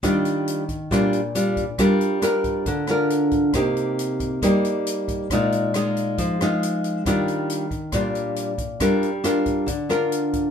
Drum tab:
HH |xxxxxxxx|xxxxxxxx|xxxxxxxx|xxxxxxxx|
SD |r---r---|r-r--r--|r---r---|r-r--r--|
BD |o--oo--o|o--oo--o|o--oo--o|o---o---|

HH |xxxxxxxx|xxxxxxxx|
SD |r---r---|r-r--r--|
BD |o--oo--o|o--oo--o|